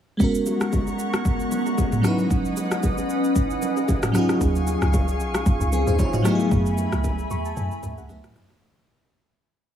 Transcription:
0.17 1.99 G#3 medium
0.17 2.02 G#3 medium
0.17 2.00 B3 medium
0.17 2.02 B3 medium
0.17 2.01 C#4 medium
0.17 4.11 F#5 medium
0.17 2.02 A#5 medium
0.17 2.02 C#6 medium
0.17 kick loud
0.17 low conga medium
0.17 shaker medium
0.22 2.02 F#4 medium
0.22 2.02 A#4 medium
0.35 shaker medium
0.46 high bongo soft
0.46 low bongo soft
0.46 shaker medium
0.61 cross-stick medium
0.61 shaker soft
0.72 kick medium
0.72 high bongo medium
0.72 low bongo medium
0.72 shaker medium
0.87 shaker medium
0.99 shaker medium
1.14 cross-stick loud
1.14 shaker soft
1.25 kick loud
1.25 low conga medium
1.25 shaker medium
1.40 shaker medium
1.52 low bongo medium
1.52 shaker loud
1.66 high bongo medium
1.66 shaker soft
1.78 kick medium
1.78 high bongo medium
1.78 shaker medium
1.92 mid tom loud
1.92 shaker medium
2.02 4.09 F#3 medium
2.02 4.10 C#4 medium
2.02 4.13 C#4 medium
2.02 4.11 D#4 medium
2.02 4.13 B4 medium
2.02 4.13 D#5 medium
2.02 4.13 D#6 medium
2.02 cross-stick medium
2.02 low conga medium
2.02 shaker loud
2.06 4.12 E4 medium
2.06 4.13 B4 medium
2.19 low bongo medium
2.19 shaker soft
2.30 kick loud
2.30 low conga medium
2.30 shaker medium
2.45 shaker medium
2.57 high bongo soft
2.57 low bongo soft
2.57 shaker medium
2.71 cross-stick medium
2.71 shaker soft
2.83 kick medium
2.83 high bongo medium
2.83 low bongo medium
2.83 shaker medium
2.98 shaker medium
3.10 shaker medium
3.24 shaker soft
3.36 kick loud
3.36 low conga medium
3.36 shaker medium
3.50 shaker medium
3.62 low bongo medium
3.62 shaker loud
3.77 high bongo medium
3.77 shaker soft
3.88 kick medium
3.88 high bongo medium
3.88 shaker medium
4.03 cross-stick loud
4.03 mid tom loud
4.03 shaker medium
4.12 6.20 F#3 medium
4.12 5.69 C#4 medium
4.12 5.70 D#4 medium
4.12 6.23 G#4 medium
4.12 6.23 F5 medium
4.12 6.23 G#5 medium
4.12 6.23 C#6 medium
4.12 cross-stick medium
4.12 low conga medium
4.12 shaker medium
4.17 5.70 F4 medium
4.17 5.71 G#4 medium
4.29 cross-stick medium
4.29 low bongo medium
4.29 shaker soft
4.41 4.76 D#2 loud
4.41 kick loud
4.41 low conga medium
4.41 shaker medium
4.55 shaker medium
4.67 high bongo soft
4.67 low bongo soft
4.67 shaker medium
4.82 5.21 C#2 medium
4.82 cross-stick medium
4.82 shaker medium
4.93 kick medium
4.93 high bongo medium
4.93 low bongo medium
4.93 shaker medium
5.08 shaker medium
5.20 5.43 B1 medium
5.20 shaker medium
5.34 cross-stick loud
5.34 shaker soft
5.46 5.59 A#1 loud
5.46 kick loud
5.46 low conga medium
5.46 shaker medium
5.61 5.83 C#2 loud
5.61 shaker soft
5.72 5.87 C4 medium
5.72 5.87 G#4 medium
5.72 low bongo medium
5.72 shaker loud
5.87 5.97 D#2 loud
5.87 5.99 D#4 medium
5.87 5.98 C5 medium
5.87 high bongo medium
5.87 shaker medium
5.99 6.13 F4 medium
5.99 6.13 C#5 medium
5.99 kick medium
5.99 high bongo medium
5.99 shaker medium
6.13 6.39 F#4 medium
6.13 6.39 D#5 medium
6.13 mid tom loud
6.13 shaker medium
6.22 8.04 F#3 medium
6.22 8.05 A3 medium
6.22 8.60 A3 medium
6.22 8.06 B3 medium
6.22 8.60 E5 medium
6.22 8.60 G#5 medium
6.22 8.60 B5 medium
6.22 cross-stick medium
6.22 low conga medium
6.22 shaker loud
6.27 8.07 E4 medium
6.27 6.34 G4 medium
6.35 8.11 G#4 medium
6.40 low bongo medium
6.40 shaker soft
6.51 6.87 F#2 loud
6.51 kick loud
6.51 low conga medium
6.51 shaker medium
6.66 shaker medium
6.78 high bongo soft
6.78 low bongo medium
6.78 shaker medium
6.92 7.25 C#2 medium
6.92 cross-stick medium
6.92 shaker medium
7.04 kick medium
7.04 high bongo medium
7.04 low bongo medium
7.04 shaker medium
7.19 shaker medium
7.30 7.53 E2 medium
7.30 7.44 C#6 medium
7.30 shaker medium
7.45 7.56 A5 medium
7.45 shaker soft
7.57 7.69 F#2 loud
7.57 7.95 G#5 medium
7.57 low conga medium
7.57 shaker medium
7.71 shaker medium
7.83 7.96 D#2 medium
7.83 mid tom medium
7.83 low bongo medium
7.83 shaker loud
7.98 8.08 C#2 medium
7.98 8.09 F#5 medium
7.98 high bongo medium
7.98 shaker soft
8.08 8.22 C#2 medium
8.08 8.61 F#3 medium
8.08 8.62 A3 medium
8.08 8.62 B3 medium
8.08 8.63 E4 medium
8.08 8.63 B4 medium
8.08 8.34 E5 medium
8.08 high bongo medium
8.08 shaker medium
8.24 cross-stick loud
8.24 mid tom loud
8.24 shaker medium
8.35 8.48 F#2 medium
8.35 8.60 D#5 medium
8.35 cross-stick medium
8.35 low conga medium
8.35 shaker loud
8.50 cross-stick medium
8.50 low bongo medium
8.50 shaker soft

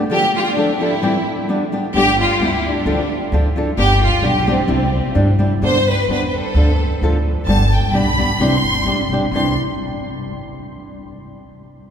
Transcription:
0.10 0.24 D3 medium
0.10 0.25 F3 medium
0.10 0.25 D4 medium
0.10 0.25 F4 medium
0.10 0.33 G4 loud
0.10 0.25 A4 medium
0.36 0.40 F4 medium
0.36 0.45 G4 medium
0.44 0.56 F4 loud
0.56 0.71 F3 medium
0.56 0.78 D4 medium
0.56 0.71 D4 medium
0.56 0.71 F4 medium
0.56 0.71 A4 medium
0.80 0.93 F3 medium
0.80 0.93 D4 medium
0.80 1.48 E4 medium
0.80 0.94 F4 medium
0.80 0.94 A4 medium
1.02 1.16 G2 medium
1.02 1.16 E3 medium
1.02 1.17 G3 medium
1.02 1.17 C4 medium
1.02 1.17 E4 medium
1.02 1.17 G4 medium
1.49 1.63 G3 medium
1.49 1.63 B3 medium
1.49 1.63 D4 medium
1.49 1.64 G4 medium
1.72 1.86 G3 medium
1.72 1.86 B3 medium
1.72 1.86 D4 medium
1.72 1.86 G4 medium
1.94 2.24 G1 medium
1.94 2.10 G2 medium
1.94 2.10 D3 medium
1.94 2.10 G3 medium
1.94 2.10 B3 medium
1.94 2.10 D4 medium
1.94 2.17 G4 loud
1.94 2.10 G4 medium
2.21 2.42 F4 loud
2.39 2.70 D2 medium
2.39 2.55 G3 medium
2.39 2.56 B3 medium
2.39 2.56 D4 medium
2.39 2.56 G4 medium
2.45 2.67 E4 medium
2.67 3.34 D4 medium
2.86 3.16 D2 medium
2.86 3.01 D3 medium
2.86 3.01 F3 medium
2.86 3.01 D4 medium
2.86 3.01 F4 medium
2.86 3.01 A4 medium
3.32 3.62 D2 loud
3.32 3.48 F3 medium
3.32 3.48 D4 medium
3.32 3.48 F4 medium
3.32 3.48 A4 medium
3.56 3.69 F3 medium
3.56 3.70 D4 medium
3.56 3.70 F4 medium
3.56 3.70 A4 medium
3.77 4.07 G1 loud
3.77 3.92 G2 medium
3.77 3.92 D3 medium
3.77 3.92 G3 medium
3.77 3.93 B3 medium
3.77 3.92 D4 medium
3.77 3.93 G4 medium
3.77 4.01 G4 loud
4.04 4.25 F4 loud
4.22 4.52 B1 medium
4.22 4.37 G3 medium
4.22 4.37 B3 medium
4.22 4.38 D4 medium
4.22 4.38 G4 medium
4.22 4.48 G4 medium
4.47 4.60 G3 medium
4.47 4.60 B3 medium
4.47 5.41 C4 medium
4.47 4.61 D4 medium
4.47 4.60 G4 medium
4.68 4.98 C2 medium
4.68 4.83 C3 medium
4.68 4.83 G3 medium
4.68 4.83 D4 medium
4.68 4.83 E4 medium
4.68 4.83 G4 medium
5.15 5.46 G2 medium
5.15 5.29 G3 medium
5.15 5.30 D4 medium
5.15 5.30 E4 medium
5.15 5.30 G4 medium
5.39 5.52 G3 medium
5.39 5.53 D4 medium
5.39 5.53 E4 medium
5.39 5.53 G4 medium
5.62 5.92 G2 medium
5.62 5.77 G2 medium
5.62 5.77 D3 medium
5.62 5.77 G3 medium
5.62 5.77 B3 medium
5.62 5.77 D4 medium
5.62 5.77 B4 medium
5.62 5.86 C5 loud
5.88 6.10 B4 medium
6.08 6.39 E2 medium
6.08 6.24 G3 medium
6.08 6.24 B3 medium
6.08 6.24 D4 medium
6.08 6.25 B4 medium
6.08 6.26 B4 medium
6.29 6.35 B4 medium
6.36 7.03 A4 medium
6.55 6.85 D2 medium
6.55 6.70 D3 medium
6.55 6.70 F3 medium
6.55 6.71 D4 medium
6.55 6.70 F4 medium
6.55 6.71 A4 medium
7.01 7.31 D2 medium
7.01 7.16 F3 medium
7.01 7.17 D4 medium
7.01 7.17 F4 medium
7.01 7.17 A4 medium
7.46 7.77 G1 loud
7.46 7.62 G2 medium
7.46 7.62 D3 medium
7.46 7.62 G3 medium
7.46 7.62 B3 medium
7.46 7.63 D4 medium
7.46 7.63 G4 medium
7.46 7.69 A5 loud
7.72 7.94 G5 medium
7.92 8.22 B1 medium
7.92 8.08 G3 medium
7.92 8.08 B3 medium
7.92 8.08 D4 medium
7.92 8.08 G4 medium
7.92 8.40 B5 medium
8.18 8.31 G3 medium
8.18 8.31 B3 medium
8.18 8.31 D4 medium
8.18 8.32 G4 medium
8.38 8.54 C2 medium
8.38 8.54 C3 medium
8.38 8.55 E3 medium
8.38 8.55 G3 medium
8.38 8.55 C4 medium
8.38 8.55 D4 medium
8.38 8.55 G4 medium
8.38 9.11 C6 loud
8.63 8.83 G1 medium
8.86 9.08 A1 medium
8.86 9.00 G3 medium
8.86 9.01 C4 medium
8.86 9.01 D4 medium
8.86 9.01 G4 medium
9.10 9.30 B1 medium
9.10 9.25 G3 medium
9.10 9.25 C4 medium
9.10 9.25 D4 medium
9.10 9.25 G4 medium
9.31 9.55 C2 medium
9.31 9.52 C3 medium
9.31 9.53 E3 medium
9.31 9.53 G3 medium
9.31 9.53 C4 medium
9.31 9.53 D4 medium
9.31 9.55 C6 medium
9.36 9.54 G4 medium

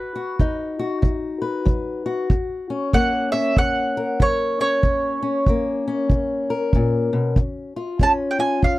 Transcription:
0.00 0.35 B2 medium
0.00 0.15 F#4 medium
0.00 0.74 B4 medium
0.16 0.79 F#4 medium
0.39 0.98 F#3 medium
0.39 2.27 D#4 medium
0.39 kick medium
0.79 2.05 F#4 medium
1.02 1.61 F#3 medium
1.02 kick medium
1.42 2.27 B4 medium
1.65 2.24 F#3 medium
1.65 kick medium
2.06 2.70 F#4 medium
2.30 2.89 F#2 medium
2.30 kick medium
2.70 3.33 C#4 medium
2.93 3.52 F#3 medium
2.93 5.47 A#3 medium
2.93 3.32 F#5 medium
2.93 kick medium
3.32 4.60 C#4 medium
3.32 3.58 E5 medium
3.57 4.15 C#3 medium
3.57 4.23 F#5 loud
3.57 kick medium
3.97 4.81 A#4 medium
4.20 4.79 F#3 medium
4.20 4.60 C#5 medium
4.20 kick medium
4.60 5.22 C#4 medium
4.60 6.71 C#5 medium
4.83 5.42 F#2 medium
4.83 kick medium
5.22 5.87 C#4 medium
5.46 6.06 F#3 medium
5.46 7.38 A#3 medium
5.46 kick medium
5.88 7.76 C#4 medium
6.10 6.69 C#3 medium
6.10 kick medium
6.50 7.34 A#4 medium
6.73 7.12 A#2 medium
6.73 kick medium
7.13 7.37 B2 medium
7.36 7.95 C#3 medium
7.36 kick medium
7.76 8.38 F4 soft
7.99 8.58 G#3 medium
7.99 8.79 C#4 medium
7.99 8.11 A5 medium
7.99 kick medium
8.31 8.39 G5 medium
8.39 8.79 F4 medium
8.39 8.64 G#5 medium
8.62 8.79 G#2 medium
8.62 8.79 F5 medium
8.62 kick medium

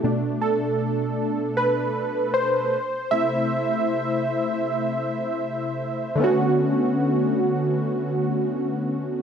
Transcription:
0.04 2.69 B2 medium
0.04 2.69 A3 soft
0.04 2.70 D4 medium
0.42 1.53 A4 medium
1.57 2.37 B4 medium
2.34 3.13 C5 medium
3.11 4.23 C3 medium
3.11 4.23 A3 soft
3.11 4.24 E4 medium
3.11 5.77 E5 loud
6.15 9.22 D3 medium
6.15 9.22 A3 medium
6.20 9.22 B3 medium
6.20 9.22 C#4 medium
6.24 9.22 F#4 medium

